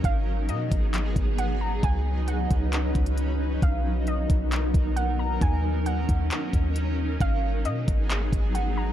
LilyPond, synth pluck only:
\new Staff \with { instrumentName = "Synth pluck" } { \time 4/4 \key gis \dorian \tempo 4 = 134 eis''4 dis''2 fis''8 ais''8 | gis''4 fis''2. | eis''4 dis''2 fis''8 ais''8 | gis''4 fis''2 r4 |
eis''4 dis''2 fis''8 ais''8 | }